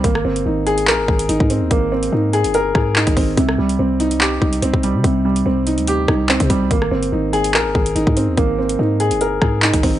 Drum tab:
HH |x--x--xx---xx-x-|x--x--xxx----xo-|x--x--xx---xx-x-|x--x--xxx----xx-|
CP |--------x-------|------------x---|--------x-------|------------x---|
SD |-r--------------|----------r-----|-r--------------|----------r-----|
BD |o---------o--o--|o---------o--oo-|o---------o--o--|o---------o--oo-|

HH |x--x--xx---xx-x-|x--x--xxx----xo-|
CP |--------x-------|------------x---|
SD |-r--------------|----------r-----|
BD |o---------o--o--|o---------o--oo-|